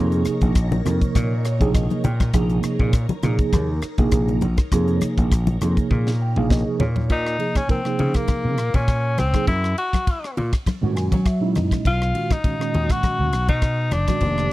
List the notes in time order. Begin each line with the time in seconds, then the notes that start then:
Already playing: F2 C3 F3 A#3 D#4 G#4 A#4 C#5 A#5
0.12 closed hi-hat
0.25 muted slap bass stroke, cross-stick, closed hi-hat
0.41 A#1, kick, closed hi-hat
0.55 kick, cross-stick, closed hi-hat
0.72 closed hi-hat, high conga, low conga
0.84 F2 C3 F3 A#3 D#4 A#4, cross-stick, closed hi-hat, low conga
1.01 kick, closed hi-hat
1.15 A#2, kick, cross-stick, closed hi-hat, high conga
1.45 C#5, cross-stick, closed hi-hat
1.59 A#1 C3 F3 A#3 D#4 G#4, kick, closed hi-hat
1.74 D#5, kick, cross-stick, closed hi-hat
1.90 closed hi-hat, high conga
2.04 A#2 G5, closed hi-hat, low conga
2.20 kick, cross-stick, closed hi-hat, high conga
2.33 A#1 C3 F3 A#3 D#4 G#4, kick, cross-stick, closed hi-hat
2.50 closed hi-hat
2.63 cross-stick, closed hi-hat
2.79 A#2, kick
2.93 kick, cross-stick, closed hi-hat
3.09 closed hi-hat, high conga, low conga
3.23 A#2 C3 F3 A#3 D#4 G#4, cross-stick, closed hi-hat, low conga
3.39 kick, closed hi-hat
3.53 D#2, kick, cross-stick, closed hi-hat, high conga
3.82 muted slap bass stroke, cross-stick, closed hi-hat
3.98 A#1 C3 F3 A#3 D#4 G#4, kick, closed hi-hat
4.11 kick, cross-stick, closed hi-hat
4.28 closed hi-hat, high conga
4.41 A#1, closed hi-hat, low conga
4.57 kick, cross-stick, closed hi-hat, high conga
4.72 F2 C3 F3 A#3 D#4 G#4, kick, cross-stick, closed hi-hat
4.88 closed hi-hat
5.01 muted slap bass stroke, cross-stick, closed hi-hat, high conga
5.18 A#1, kick, closed hi-hat
5.32 kick, cross-stick, closed hi-hat
5.47 closed hi-hat, high conga, low conga
5.61 F2 C3 F3 A#3 D#4 G#4, cross-stick, closed hi-hat, low conga
5.77 kick, closed hi-hat
5.91 A#2, kick, high tom
6.07 snare
6.22 G5
6.36 A#1 C3 F3 A#3 D#4 G#4 F5, mid tom
6.49 D#5, kick, snare
6.80 A#2 C#5, floor tom, low conga
6.96 floor tom, high conga
7.10 A#2 D#4, kick, ride
7.27 cross-stick
7.38 C3 F3 A#3 D#4 G#4, ride
7.55 C#4, kick, cross-stick, ride
7.67 C3 F3 A#3 C4 D#4 A#4, kick, ride
7.85 C3 F3 A#3 D#4 G#4, cross-stick
7.99 C#3, ride, low conga
8.14 A#3, kick, cross-stick, ride
8.28 muted slap bass stroke, kick, cross-stick, ride, high conga
8.45 C#3
8.58 A#2, cross-stick, ride
8.74 A#2 C#4, kick, ride, low conga
8.88 kick, cross-stick, ride
9.18 C#2 C4, cross-stick, ride, low conga
9.34 C3 F3 A#3 D#4 G#4, kick, cross-stick, ride, high conga
9.47 F#2 E4, kick, ride
9.64 cross-stick
9.78 F#4, ride
9.93 kick, cross-stick, ride, high conga
10.07 kick, ride
10.24 cross-stick
10.37 A#2, ride, low conga
10.53 kick, cross-stick, ride
10.66 muted slap bass stroke, kick, cross-stick, ride, high conga
10.81 A#2 D#3 G#3 C#4 F#4
10.96 F#2 G#5, cross-stick, ride
11.12 F#3, kick, ride, low conga
11.26 E5, kick, cross-stick, ride
11.41 A#2 G#3 C#4 D#4 E4
11.55 F#2 D#5, cross-stick, ride, low conga
11.71 kick, cross-stick, ride, high conga
11.85 B1 F4, kick, ride
12.02 cross-stick
12.13 A#2 D#3 G#3 C#4 F#4, ride
12.30 D#4, kick, cross-stick, ride, high conga
12.44 A#2 D#3 G#3 C#4 F#4, kick, ride
12.59 A#2 D#3 G#3 C#4 F#4, cross-stick
12.74 D#2, ride, low conga
12.90 F#4, kick, cross-stick, ride
13.03 muted slap bass stroke, kick, cross-stick, ride, high conga
13.19 D#2
13.33 B1, cross-stick, ride
13.49 B2 D#4, kick, ride, low conga
13.62 kick, cross-stick, ride
13.91 F#1 D4, cross-stick, ride, low conga
14.07 A#2 D#3 G#3 C#4 F#4, kick, cross-stick, ride, high conga
14.21 F1 C3 D#3 F3 A#3 G4, kick, ride
14.38 cross-stick